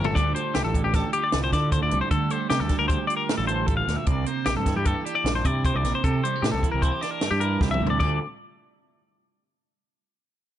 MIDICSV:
0, 0, Header, 1, 5, 480
1, 0, Start_track
1, 0, Key_signature, -1, "minor"
1, 0, Tempo, 391645
1, 197, Time_signature, 5, 2, 24, 8
1, 12975, End_track
2, 0, Start_track
2, 0, Title_t, "Clean electric guitar"
2, 0, Program_c, 0, 27
2, 63, Note_on_c, 0, 69, 76
2, 186, Note_on_c, 0, 74, 79
2, 189, Note_off_c, 0, 69, 0
2, 422, Note_off_c, 0, 74, 0
2, 427, Note_on_c, 0, 72, 66
2, 670, Note_off_c, 0, 72, 0
2, 672, Note_on_c, 0, 67, 75
2, 785, Note_off_c, 0, 67, 0
2, 790, Note_on_c, 0, 69, 56
2, 1027, Note_off_c, 0, 69, 0
2, 1032, Note_on_c, 0, 67, 61
2, 1151, Note_off_c, 0, 67, 0
2, 1151, Note_on_c, 0, 69, 71
2, 1382, Note_off_c, 0, 69, 0
2, 1387, Note_on_c, 0, 67, 70
2, 1509, Note_off_c, 0, 67, 0
2, 1515, Note_on_c, 0, 74, 64
2, 1753, Note_off_c, 0, 74, 0
2, 1761, Note_on_c, 0, 72, 63
2, 1872, Note_off_c, 0, 72, 0
2, 1877, Note_on_c, 0, 74, 69
2, 2106, Note_off_c, 0, 74, 0
2, 2111, Note_on_c, 0, 72, 72
2, 2231, Note_off_c, 0, 72, 0
2, 2238, Note_on_c, 0, 74, 63
2, 2461, Note_off_c, 0, 74, 0
2, 2466, Note_on_c, 0, 72, 62
2, 2581, Note_off_c, 0, 72, 0
2, 2586, Note_on_c, 0, 69, 79
2, 2832, Note_off_c, 0, 69, 0
2, 2832, Note_on_c, 0, 72, 69
2, 3055, Note_off_c, 0, 72, 0
2, 3060, Note_on_c, 0, 67, 72
2, 3186, Note_off_c, 0, 67, 0
2, 3186, Note_on_c, 0, 69, 60
2, 3412, Note_off_c, 0, 69, 0
2, 3417, Note_on_c, 0, 70, 62
2, 3526, Note_off_c, 0, 70, 0
2, 3531, Note_on_c, 0, 72, 72
2, 3762, Note_off_c, 0, 72, 0
2, 3767, Note_on_c, 0, 74, 65
2, 3875, Note_off_c, 0, 74, 0
2, 3880, Note_on_c, 0, 70, 61
2, 4133, Note_off_c, 0, 70, 0
2, 4138, Note_on_c, 0, 69, 63
2, 4253, Note_off_c, 0, 69, 0
2, 4257, Note_on_c, 0, 72, 68
2, 4493, Note_off_c, 0, 72, 0
2, 4493, Note_on_c, 0, 69, 65
2, 4614, Note_off_c, 0, 69, 0
2, 4619, Note_on_c, 0, 77, 61
2, 4860, Note_off_c, 0, 77, 0
2, 4860, Note_on_c, 0, 76, 61
2, 4984, Note_off_c, 0, 76, 0
2, 4984, Note_on_c, 0, 74, 87
2, 5231, Note_off_c, 0, 74, 0
2, 5231, Note_on_c, 0, 72, 66
2, 5464, Note_on_c, 0, 67, 75
2, 5474, Note_off_c, 0, 72, 0
2, 5591, Note_off_c, 0, 67, 0
2, 5597, Note_on_c, 0, 69, 65
2, 5836, Note_off_c, 0, 69, 0
2, 5841, Note_on_c, 0, 67, 67
2, 5949, Note_off_c, 0, 67, 0
2, 5949, Note_on_c, 0, 69, 72
2, 6190, Note_off_c, 0, 69, 0
2, 6190, Note_on_c, 0, 67, 70
2, 6314, Note_off_c, 0, 67, 0
2, 6314, Note_on_c, 0, 74, 65
2, 6556, Note_off_c, 0, 74, 0
2, 6563, Note_on_c, 0, 72, 64
2, 6686, Note_off_c, 0, 72, 0
2, 6686, Note_on_c, 0, 74, 69
2, 6923, Note_off_c, 0, 74, 0
2, 6933, Note_on_c, 0, 72, 74
2, 7056, Note_off_c, 0, 72, 0
2, 7056, Note_on_c, 0, 74, 64
2, 7288, Note_off_c, 0, 74, 0
2, 7293, Note_on_c, 0, 72, 64
2, 7405, Note_on_c, 0, 69, 84
2, 7407, Note_off_c, 0, 72, 0
2, 7643, Note_off_c, 0, 69, 0
2, 7643, Note_on_c, 0, 72, 70
2, 7873, Note_on_c, 0, 67, 73
2, 7882, Note_off_c, 0, 72, 0
2, 7981, Note_off_c, 0, 67, 0
2, 7986, Note_on_c, 0, 69, 60
2, 8226, Note_off_c, 0, 69, 0
2, 8231, Note_on_c, 0, 70, 62
2, 8356, Note_off_c, 0, 70, 0
2, 8359, Note_on_c, 0, 72, 70
2, 8596, Note_off_c, 0, 72, 0
2, 8596, Note_on_c, 0, 74, 65
2, 8712, Note_off_c, 0, 74, 0
2, 8712, Note_on_c, 0, 70, 58
2, 8956, Note_on_c, 0, 67, 62
2, 8957, Note_off_c, 0, 70, 0
2, 9075, Note_on_c, 0, 70, 63
2, 9079, Note_off_c, 0, 67, 0
2, 9328, Note_off_c, 0, 70, 0
2, 9328, Note_on_c, 0, 67, 66
2, 9445, Note_off_c, 0, 67, 0
2, 9450, Note_on_c, 0, 76, 59
2, 9680, Note_off_c, 0, 76, 0
2, 9685, Note_on_c, 0, 74, 60
2, 9789, Note_off_c, 0, 74, 0
2, 9803, Note_on_c, 0, 74, 72
2, 10026, Note_off_c, 0, 74, 0
2, 12975, End_track
3, 0, Start_track
3, 0, Title_t, "Clean electric guitar"
3, 0, Program_c, 1, 27
3, 189, Note_on_c, 1, 38, 64
3, 205, Note_on_c, 1, 50, 53
3, 211, Note_on_c, 1, 55, 52
3, 218, Note_on_c, 1, 65, 54
3, 235, Note_on_c, 1, 69, 58
3, 452, Note_off_c, 1, 55, 0
3, 457, Note_on_c, 1, 55, 51
3, 919, Note_off_c, 1, 50, 0
3, 924, Note_on_c, 1, 50, 51
3, 1173, Note_off_c, 1, 69, 0
3, 1178, Note_on_c, 1, 67, 55
3, 1440, Note_off_c, 1, 65, 0
3, 1445, Note_on_c, 1, 65, 53
3, 1663, Note_on_c, 1, 45, 53
3, 1921, Note_off_c, 1, 67, 0
3, 1926, Note_on_c, 1, 69, 53
3, 2107, Note_off_c, 1, 38, 0
3, 2141, Note_on_c, 1, 38, 67
3, 2371, Note_off_c, 1, 55, 0
3, 2376, Note_on_c, 1, 55, 56
3, 2582, Note_off_c, 1, 38, 0
3, 2589, Note_off_c, 1, 65, 0
3, 2590, Note_off_c, 1, 69, 0
3, 2597, Note_on_c, 1, 38, 61
3, 2607, Note_off_c, 1, 45, 0
3, 2844, Note_off_c, 1, 55, 0
3, 2849, Note_on_c, 1, 55, 50
3, 3302, Note_off_c, 1, 50, 0
3, 3317, Note_on_c, 1, 50, 52
3, 3551, Note_on_c, 1, 67, 51
3, 3787, Note_on_c, 1, 65, 58
3, 4047, Note_on_c, 1, 45, 55
3, 4275, Note_off_c, 1, 67, 0
3, 4280, Note_on_c, 1, 69, 50
3, 4497, Note_off_c, 1, 45, 0
3, 4512, Note_on_c, 1, 45, 54
3, 4745, Note_off_c, 1, 45, 0
3, 4750, Note_on_c, 1, 46, 58
3, 4964, Note_off_c, 1, 65, 0
3, 4970, Note_off_c, 1, 69, 0
3, 4977, Note_off_c, 1, 46, 0
3, 4982, Note_on_c, 1, 48, 65
3, 4998, Note_off_c, 1, 38, 0
3, 5240, Note_off_c, 1, 55, 0
3, 5245, Note_on_c, 1, 58, 52
3, 5710, Note_off_c, 1, 48, 0
3, 5719, Note_off_c, 1, 50, 0
3, 5726, Note_on_c, 1, 52, 53
3, 5974, Note_on_c, 1, 67, 52
3, 6197, Note_on_c, 1, 62, 53
3, 6429, Note_on_c, 1, 43, 57
3, 6671, Note_off_c, 1, 67, 0
3, 6676, Note_on_c, 1, 64, 50
3, 6915, Note_off_c, 1, 43, 0
3, 6928, Note_on_c, 1, 48, 66
3, 7155, Note_off_c, 1, 58, 0
3, 7170, Note_on_c, 1, 58, 54
3, 7376, Note_off_c, 1, 48, 0
3, 7376, Note_off_c, 1, 58, 0
3, 7408, Note_on_c, 1, 48, 65
3, 7445, Note_off_c, 1, 62, 0
3, 7654, Note_on_c, 1, 55, 52
3, 7792, Note_off_c, 1, 55, 0
3, 7792, Note_on_c, 1, 58, 43
3, 7829, Note_off_c, 1, 52, 0
3, 8125, Note_off_c, 1, 48, 0
3, 8130, Note_on_c, 1, 52, 51
3, 8360, Note_off_c, 1, 64, 0
3, 8389, Note_on_c, 1, 64, 52
3, 8481, Note_off_c, 1, 64, 0
3, 8481, Note_on_c, 1, 67, 44
3, 8608, Note_on_c, 1, 62, 52
3, 8846, Note_on_c, 1, 43, 55
3, 9082, Note_off_c, 1, 67, 0
3, 9116, Note_on_c, 1, 64, 50
3, 9344, Note_on_c, 1, 46, 52
3, 9573, Note_off_c, 1, 46, 0
3, 9578, Note_on_c, 1, 48, 56
3, 9776, Note_off_c, 1, 43, 0
3, 9777, Note_off_c, 1, 62, 0
3, 9778, Note_off_c, 1, 52, 0
3, 9799, Note_on_c, 1, 38, 52
3, 9810, Note_off_c, 1, 48, 0
3, 9818, Note_off_c, 1, 58, 0
3, 9823, Note_on_c, 1, 50, 53
3, 9828, Note_on_c, 1, 55, 51
3, 9841, Note_on_c, 1, 65, 51
3, 9842, Note_off_c, 1, 64, 0
3, 9847, Note_on_c, 1, 69, 46
3, 10017, Note_off_c, 1, 38, 0
3, 10029, Note_off_c, 1, 50, 0
3, 10031, Note_off_c, 1, 55, 0
3, 10038, Note_off_c, 1, 65, 0
3, 10040, Note_off_c, 1, 69, 0
3, 12975, End_track
4, 0, Start_track
4, 0, Title_t, "Picked electric bass"
4, 0, Program_c, 2, 34
4, 0, Note_on_c, 2, 31, 105
4, 164, Note_off_c, 2, 31, 0
4, 198, Note_on_c, 2, 38, 88
4, 401, Note_off_c, 2, 38, 0
4, 683, Note_on_c, 2, 36, 74
4, 781, Note_off_c, 2, 36, 0
4, 795, Note_on_c, 2, 33, 70
4, 998, Note_off_c, 2, 33, 0
4, 1039, Note_on_c, 2, 33, 78
4, 1240, Note_off_c, 2, 33, 0
4, 1638, Note_on_c, 2, 36, 86
4, 1840, Note_off_c, 2, 36, 0
4, 1870, Note_on_c, 2, 50, 75
4, 2177, Note_off_c, 2, 50, 0
4, 2243, Note_on_c, 2, 38, 69
4, 2340, Note_off_c, 2, 38, 0
4, 2364, Note_on_c, 2, 36, 78
4, 2461, Note_off_c, 2, 36, 0
4, 2589, Note_on_c, 2, 50, 83
4, 2795, Note_off_c, 2, 50, 0
4, 3076, Note_on_c, 2, 48, 76
4, 3177, Note_off_c, 2, 48, 0
4, 3189, Note_on_c, 2, 38, 78
4, 3293, Note_off_c, 2, 38, 0
4, 3428, Note_on_c, 2, 38, 70
4, 3635, Note_off_c, 2, 38, 0
4, 4149, Note_on_c, 2, 33, 76
4, 4664, Note_off_c, 2, 33, 0
4, 4752, Note_on_c, 2, 38, 76
4, 4856, Note_off_c, 2, 38, 0
4, 4984, Note_on_c, 2, 36, 91
4, 5194, Note_off_c, 2, 36, 0
4, 5473, Note_on_c, 2, 34, 79
4, 5577, Note_off_c, 2, 34, 0
4, 5597, Note_on_c, 2, 43, 78
4, 5802, Note_off_c, 2, 43, 0
4, 5839, Note_on_c, 2, 43, 79
4, 6043, Note_off_c, 2, 43, 0
4, 6428, Note_on_c, 2, 34, 83
4, 6637, Note_off_c, 2, 34, 0
4, 6678, Note_on_c, 2, 48, 78
4, 6985, Note_off_c, 2, 48, 0
4, 7043, Note_on_c, 2, 36, 69
4, 7144, Note_off_c, 2, 36, 0
4, 7150, Note_on_c, 2, 34, 76
4, 7257, Note_off_c, 2, 34, 0
4, 7401, Note_on_c, 2, 48, 84
4, 7605, Note_off_c, 2, 48, 0
4, 7877, Note_on_c, 2, 45, 78
4, 7981, Note_off_c, 2, 45, 0
4, 8008, Note_on_c, 2, 36, 75
4, 8107, Note_off_c, 2, 36, 0
4, 8261, Note_on_c, 2, 36, 68
4, 8457, Note_off_c, 2, 36, 0
4, 8964, Note_on_c, 2, 43, 73
4, 9270, Note_off_c, 2, 43, 0
4, 9322, Note_on_c, 2, 36, 65
4, 9538, Note_off_c, 2, 36, 0
4, 9570, Note_on_c, 2, 38, 72
4, 9783, Note_off_c, 2, 38, 0
4, 9807, Note_on_c, 2, 38, 79
4, 10028, Note_off_c, 2, 38, 0
4, 12975, End_track
5, 0, Start_track
5, 0, Title_t, "Drums"
5, 54, Note_on_c, 9, 43, 106
5, 177, Note_off_c, 9, 43, 0
5, 199, Note_on_c, 9, 36, 98
5, 207, Note_on_c, 9, 42, 67
5, 322, Note_off_c, 9, 36, 0
5, 329, Note_off_c, 9, 42, 0
5, 438, Note_on_c, 9, 42, 53
5, 561, Note_off_c, 9, 42, 0
5, 668, Note_on_c, 9, 42, 67
5, 671, Note_on_c, 9, 38, 91
5, 791, Note_off_c, 9, 42, 0
5, 793, Note_off_c, 9, 38, 0
5, 913, Note_on_c, 9, 36, 70
5, 917, Note_on_c, 9, 42, 57
5, 1035, Note_off_c, 9, 36, 0
5, 1039, Note_off_c, 9, 42, 0
5, 1146, Note_on_c, 9, 42, 74
5, 1148, Note_on_c, 9, 38, 31
5, 1151, Note_on_c, 9, 36, 94
5, 1268, Note_off_c, 9, 42, 0
5, 1271, Note_off_c, 9, 38, 0
5, 1273, Note_off_c, 9, 36, 0
5, 1383, Note_on_c, 9, 42, 55
5, 1505, Note_off_c, 9, 42, 0
5, 1620, Note_on_c, 9, 42, 76
5, 1623, Note_on_c, 9, 38, 98
5, 1743, Note_off_c, 9, 42, 0
5, 1745, Note_off_c, 9, 38, 0
5, 1870, Note_on_c, 9, 36, 60
5, 1875, Note_on_c, 9, 42, 57
5, 1877, Note_on_c, 9, 38, 30
5, 1993, Note_off_c, 9, 36, 0
5, 1997, Note_off_c, 9, 42, 0
5, 2000, Note_off_c, 9, 38, 0
5, 2109, Note_on_c, 9, 36, 98
5, 2110, Note_on_c, 9, 42, 76
5, 2231, Note_off_c, 9, 36, 0
5, 2232, Note_off_c, 9, 42, 0
5, 2343, Note_on_c, 9, 42, 53
5, 2466, Note_off_c, 9, 42, 0
5, 2585, Note_on_c, 9, 42, 70
5, 2587, Note_on_c, 9, 36, 95
5, 2707, Note_off_c, 9, 42, 0
5, 2709, Note_off_c, 9, 36, 0
5, 2822, Note_on_c, 9, 42, 51
5, 2945, Note_off_c, 9, 42, 0
5, 3066, Note_on_c, 9, 42, 66
5, 3068, Note_on_c, 9, 38, 93
5, 3188, Note_off_c, 9, 42, 0
5, 3191, Note_off_c, 9, 38, 0
5, 3298, Note_on_c, 9, 42, 51
5, 3300, Note_on_c, 9, 38, 29
5, 3305, Note_on_c, 9, 36, 68
5, 3420, Note_off_c, 9, 42, 0
5, 3423, Note_off_c, 9, 38, 0
5, 3428, Note_off_c, 9, 36, 0
5, 3548, Note_on_c, 9, 42, 72
5, 3549, Note_on_c, 9, 36, 93
5, 3671, Note_off_c, 9, 42, 0
5, 3672, Note_off_c, 9, 36, 0
5, 3798, Note_on_c, 9, 42, 53
5, 3920, Note_off_c, 9, 42, 0
5, 4035, Note_on_c, 9, 42, 69
5, 4037, Note_on_c, 9, 38, 99
5, 4157, Note_off_c, 9, 42, 0
5, 4160, Note_off_c, 9, 38, 0
5, 4269, Note_on_c, 9, 42, 52
5, 4392, Note_off_c, 9, 42, 0
5, 4506, Note_on_c, 9, 42, 70
5, 4511, Note_on_c, 9, 36, 92
5, 4629, Note_off_c, 9, 42, 0
5, 4634, Note_off_c, 9, 36, 0
5, 4760, Note_on_c, 9, 42, 51
5, 4762, Note_on_c, 9, 38, 30
5, 4883, Note_off_c, 9, 42, 0
5, 4885, Note_off_c, 9, 38, 0
5, 4982, Note_on_c, 9, 42, 68
5, 4991, Note_on_c, 9, 36, 91
5, 5105, Note_off_c, 9, 42, 0
5, 5113, Note_off_c, 9, 36, 0
5, 5224, Note_on_c, 9, 42, 55
5, 5346, Note_off_c, 9, 42, 0
5, 5460, Note_on_c, 9, 42, 76
5, 5462, Note_on_c, 9, 38, 96
5, 5583, Note_off_c, 9, 42, 0
5, 5585, Note_off_c, 9, 38, 0
5, 5712, Note_on_c, 9, 36, 70
5, 5712, Note_on_c, 9, 42, 55
5, 5715, Note_on_c, 9, 38, 30
5, 5834, Note_off_c, 9, 36, 0
5, 5835, Note_off_c, 9, 42, 0
5, 5837, Note_off_c, 9, 38, 0
5, 5948, Note_on_c, 9, 42, 73
5, 5956, Note_on_c, 9, 36, 91
5, 6071, Note_off_c, 9, 42, 0
5, 6078, Note_off_c, 9, 36, 0
5, 6205, Note_on_c, 9, 42, 56
5, 6327, Note_off_c, 9, 42, 0
5, 6444, Note_on_c, 9, 42, 71
5, 6446, Note_on_c, 9, 38, 102
5, 6566, Note_off_c, 9, 42, 0
5, 6569, Note_off_c, 9, 38, 0
5, 6677, Note_on_c, 9, 42, 55
5, 6679, Note_on_c, 9, 36, 63
5, 6800, Note_off_c, 9, 42, 0
5, 6801, Note_off_c, 9, 36, 0
5, 6919, Note_on_c, 9, 36, 90
5, 6922, Note_on_c, 9, 42, 74
5, 7042, Note_off_c, 9, 36, 0
5, 7045, Note_off_c, 9, 42, 0
5, 7164, Note_on_c, 9, 42, 48
5, 7166, Note_on_c, 9, 38, 27
5, 7286, Note_off_c, 9, 42, 0
5, 7289, Note_off_c, 9, 38, 0
5, 7402, Note_on_c, 9, 36, 93
5, 7405, Note_on_c, 9, 42, 70
5, 7525, Note_off_c, 9, 36, 0
5, 7528, Note_off_c, 9, 42, 0
5, 7658, Note_on_c, 9, 42, 51
5, 7780, Note_off_c, 9, 42, 0
5, 7893, Note_on_c, 9, 42, 63
5, 7895, Note_on_c, 9, 38, 99
5, 8016, Note_off_c, 9, 42, 0
5, 8018, Note_off_c, 9, 38, 0
5, 8125, Note_on_c, 9, 36, 69
5, 8135, Note_on_c, 9, 42, 51
5, 8248, Note_off_c, 9, 36, 0
5, 8258, Note_off_c, 9, 42, 0
5, 8365, Note_on_c, 9, 36, 89
5, 8368, Note_on_c, 9, 42, 66
5, 8488, Note_off_c, 9, 36, 0
5, 8491, Note_off_c, 9, 42, 0
5, 8608, Note_on_c, 9, 42, 52
5, 8611, Note_on_c, 9, 38, 30
5, 8731, Note_off_c, 9, 42, 0
5, 8733, Note_off_c, 9, 38, 0
5, 8838, Note_on_c, 9, 42, 73
5, 8841, Note_on_c, 9, 38, 93
5, 8961, Note_off_c, 9, 42, 0
5, 8963, Note_off_c, 9, 38, 0
5, 9079, Note_on_c, 9, 42, 54
5, 9202, Note_off_c, 9, 42, 0
5, 9326, Note_on_c, 9, 36, 87
5, 9331, Note_on_c, 9, 38, 52
5, 9448, Note_off_c, 9, 36, 0
5, 9454, Note_off_c, 9, 38, 0
5, 9486, Note_on_c, 9, 47, 57
5, 9608, Note_off_c, 9, 47, 0
5, 9641, Note_on_c, 9, 43, 75
5, 9764, Note_off_c, 9, 43, 0
5, 9809, Note_on_c, 9, 49, 70
5, 9811, Note_on_c, 9, 36, 86
5, 9932, Note_off_c, 9, 49, 0
5, 9933, Note_off_c, 9, 36, 0
5, 12975, End_track
0, 0, End_of_file